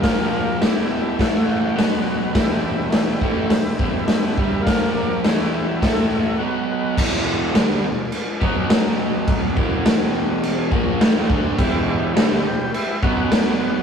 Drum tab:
CC |--------|--------|--------|x-x-x-x-|
HH |o-o-o-o-|o-o-o-o-|o-o-o---|--------|
SD |o-o-o-o-|o-o-o-o-|o-o-o---|--o---o-|
BD |o---o---|o--o-o-o|o---o---|o----o--|

CC |x-x-x-x-|x-x-x-x-|
HH |--------|--------|
SD |--o---o-|--o---o-|
BD |oo---o-o|o----o--|